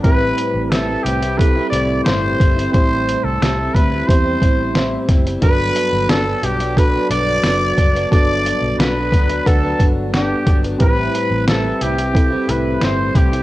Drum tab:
HH |x-x-x-xxx-x-x-xx|x-x-x-x-x-x-x-xx|x-x-x-xxx-x-x-xx|x-x-x-xxx-x-x-xx|
SD |----o-------o---|----o-------o-o-|----o-------o---|----o-------o---|
BD |o-------o-----o-|o-----o-o-o---o-|o-------o-----o-|o-----o-o-o---o-|

HH |x-x-x-xxx-x-x-xx|
SD |----o-------o---|
BD |o-------o-----o-|